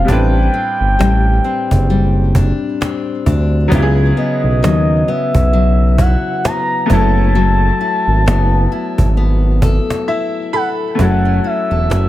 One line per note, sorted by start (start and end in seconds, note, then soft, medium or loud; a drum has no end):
0.00 0.99 G3 medium
0.00 0.53 C4 medium
0.00 0.19 F4 medium
0.05 0.49 A1 loud
0.05 3.72 A2 medium
0.05 3.66 G3 medium
0.05 0.15 B3 soft
0.05 3.68 D4 medium
0.05 cajon bass loud
0.09 3.70 C4 medium
0.09 3.69 E4 medium
0.09 3.70 B4 medium
0.09 3.23 G5 loud
0.54 1.43 C4 medium
0.80 0.97 G1 medium
0.99 1.40 A1 loud
0.99 1.89 G3 medium
0.99 cajon slap loud
1.44 2.80 C4 medium
1.44 cajon slap soft
1.71 2.52 F#1 medium
1.71 cajon bass medium
1.90 3.82 G3 medium
1.90 cajon slap soft
2.35 3.25 D4 medium
2.35 cajon bass loud
2.81 3.82 C4 medium
2.81 cajon slap loud
3.26 3.67 D2 loud
3.26 3.82 D4 medium
3.26 cajon bass medium
3.68 4.12 C#2 loud
3.68 7.01 C#3 loud
3.68 6.84 F#3 medium
3.68 6.85 B3 medium
3.68 6.86 C#4 medium
3.68 cajon bass loud
3.74 6.87 E4 medium
3.74 3.81 G4 medium
3.82 6.91 G#4 medium
4.17 5.08 B3 medium
4.17 5.11 D#5 loud
4.43 4.64 B1 medium
4.62 5.03 D#2 loud
4.62 5.53 F#3 medium
4.62 cajon slap loud
5.08 6.44 B3 medium
5.08 6.02 E5 loud
5.08 cajon slap soft
5.35 6.15 B1 loud
5.35 cajon bass medium
5.53 6.89 F#3 medium
5.53 cajon slap soft
5.98 7.38 E4 medium
5.98 6.47 F#5 loud
5.98 cajon bass loud
6.44 8.26 B3 medium
6.44 6.93 A#5 loud
6.44 cajon slap loud
6.86 7.71 F#1 loud
6.86 7.35 F#3 medium
6.86 10.48 A3 medium
6.86 10.49 B3 medium
6.86 10.50 C#4 medium
6.86 cajon bass loud
6.91 10.51 E4 medium
6.91 10.52 A4 medium
6.91 10.09 A5 loud
7.35 10.98 F#3 medium
7.35 cajon slap soft
7.81 8.71 E4 medium
8.07 8.28 G#1 medium
8.26 8.67 F#1 loud
8.26 9.16 B3 medium
8.26 cajon slap loud
8.71 10.08 E4 medium
8.71 cajon slap soft
8.98 9.79 G#1 medium
8.98 cajon bass loud
9.17 11.10 B3 medium
9.17 cajon slap soft
9.62 10.53 A4 medium
9.62 cajon bass loud
9.90 cajon slap loud
10.08 11.44 E4 medium
10.08 10.50 E5 medium
10.53 11.71 A4 medium
10.53 10.70 F#5 loud
10.53 10.96 B5 medium
10.95 12.09 F#3 medium
10.95 12.09 A3 medium
10.95 12.09 C#4 medium
10.95 12.09 E4 medium
10.95 cajon bass loud
10.99 11.39 F#1 loud
10.99 12.09 F#4 medium
10.99 12.09 A4 medium
10.99 11.48 F#5 loud
11.25 11.89 C#4 medium
11.44 12.09 E4 medium
11.44 12.09 E5 medium
11.71 11.88 E1 medium
11.71 12.09 A4 medium
11.90 12.09 F#1 loud
11.90 12.09 C#4 medium
11.90 cajon slap loud